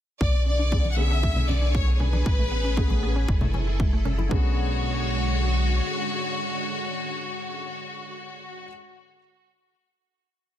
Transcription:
0.21 analog synth bass B1, string machine D3 G#4 C#6, synth arpeggio sound G#3, violin section D5, kick
0.34 synth arpeggio sound B3
0.46 synth arpeggio sound C#4, violin section D5
0.59 synth arpeggio sound D4
0.72 grand piano D3 B3 C#4 G#4, synth arpeggio sound G#3, kick
0.85 synth arpeggio sound B3, high conga
0.91 violin section F#5
0.96 grand piano D3 B3 C#4 G#4, synth arpeggio sound C#4, violin section E5
1.11 synth arpeggio sound D4
1.23 synth arpeggio sound G#3, kick
1.36 synth arpeggio sound B3, low conga
1.49 synth arpeggio sound C#4, violin section D5, high conga, low conga
1.62 synth arpeggio sound D4
1.74 synth arpeggio sound G#3, violin section C#5, kick
1.87 synth arpeggio sound B3
1.93 violin section C#5
2.00 synth arpeggio sound C#4, violin section B4, low conga
2.13 synth arpeggio sound D4, high conga
2.26 analog synth bass A1, synth arpeggio sound G#3, string machine C#4 B4, kick
2.39 synth arpeggio sound A3
2.52 synth arpeggio sound B3
2.64 synth arpeggio sound C#4
2.77 grand piano C#3 A3 B3 G#4, synth arpeggio sound G#3, kick
2.90 synth arpeggio sound A3, high conga
3.02 grand piano C#3 A3 B3 G#4, synth arpeggio sound B3
3.16 synth arpeggio sound C#4
3.28 analog synth bass F#1, synth arpeggio sound G#3, string machine E4 A4, kick
3.41 synth arpeggio sound A3, low conga
3.54 synth arpeggio sound C#4, high conga, low conga
3.67 synth arpeggio sound E4
3.80 synth arpeggio sound G#3, kick
3.93 synth arpeggio sound A3
4.05 synth arpeggio sound C#4, low conga
4.18 synth arpeggio sound E4, high conga
4.29 analog synth bass B1, grand piano D3 B3 C#4 G#4, string machine D3 G#3 C#5, synth arpeggio sound G#3, violin section F#4, kick

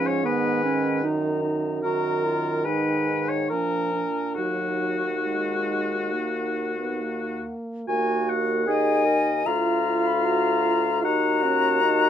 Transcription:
Already playing: bassoon G#2, french horn F3, clarinet C#4, flute G#5
0.06 oboe C#5
0.25 french horn D#3, clarinet B3, oboe B4, flute G#5
0.64 clarinet C#4
1.04 bassoon F#2, clarinet D#4, flute A#5
1.43 clarinet D#4
1.83 french horn D#3, clarinet F#4, oboe A#4, flute A#5
2.25 clarinet F4
2.64 bassoon G#2, clarinet D#4, oboe B4, flute G#5
3.28 oboe C#5
3.50 bassoon A#2, french horn F3, clarinet D4, oboe A#4, flute G#5
3.94 clarinet D4
4.35 bassoon D#2, french horn F#3, clarinet D#4, oboe F#4, flute F#5
5.24 french horn G#3
6.13 french horn A#3
6.80 french horn B3
7.02 french horn A#3
7.88 bassoon D#2, french horn A#3, clarinet F#4, oboe G#5
8.29 oboe F#5
8.67 french horn D#4, clarinet G#4, oboe D#5, flute G#5
9.05 clarinet A#4
9.45 bassoon D2, clarinet F4, french horn F4, oboe F5, flute A#5
10.07 flute B5
10.25 french horn F#4, flute A#5
10.65 french horn F4
11.03 bassoon D#2, french horn D#4, clarinet F#4, oboe F#5, flute A#5
11.42 french horn C#4, oboe F#5
11.84 french horn D#4

